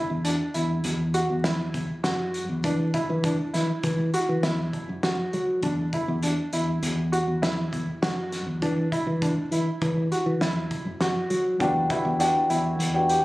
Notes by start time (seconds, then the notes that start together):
Already playing: E4
0.10 E2
0.24 D4, closed hi-hat
0.54 E2 E4, closed hi-hat
0.84 E2, closed hi-hat
1.14 F#4, closed hi-hat
1.30 E2
1.44 E4, snare, closed hi-hat
1.74 E2, kick, closed hi-hat
2.04 F#2 F#4, snare, closed hi-hat
2.34 closed hi-hat
2.49 E2
2.64 E3 D4, kick, closed hi-hat
2.94 E4, kick, closed hi-hat
3.10 E3
3.24 D4, kick, closed hi-hat
3.54 E3 E4, snare, closed hi-hat
3.83 E3, kick, closed hi-hat
4.14 F#4, closed hi-hat
4.29 E3
4.43 E2 E4, snare, closed hi-hat
4.73 kick, closed hi-hat
4.89 F#2
5.03 F#4, snare, closed hi-hat
5.33 F#3, closed hi-hat
5.63 E2 D4, kick, closed hi-hat
5.93 E4, kick, closed hi-hat
6.08 E2
6.23 D4, closed hi-hat
6.53 E2 E4, closed hi-hat
6.83 E2, closed hi-hat
7.12 F#4, closed hi-hat
7.28 E2
7.42 E4, snare, closed hi-hat
7.72 E2, kick, closed hi-hat
8.02 F#2 F#4, snare, closed hi-hat
8.32 snare, closed hi-hat
8.46 E2
8.62 E3 D4, kick, closed hi-hat
8.92 E4, kick, closed hi-hat
9.07 E3
9.22 D4, kick, closed hi-hat
9.51 E3 E4, closed hi-hat
9.82 E3, kick, closed hi-hat
10.12 F#4, closed hi-hat
10.26 E3
10.40 E2 E4, snare, closed hi-hat
10.71 kick, closed hi-hat
10.85 F#2
11.01 F#4, snare, closed hi-hat
11.30 F#3, closed hi-hat
11.59 E2 E3 D4 F#4 G4, kick, closed hi-hat
11.89 E3 D4 E4 F#4 G4, kick, closed hi-hat
12.05 E2
12.19 E3 D4 F#4 G4, closed hi-hat
12.50 E2 E4, closed hi-hat
12.79 E2, closed hi-hat
12.94 E3 D4 F#4 G4
13.09 G4, closed hi-hat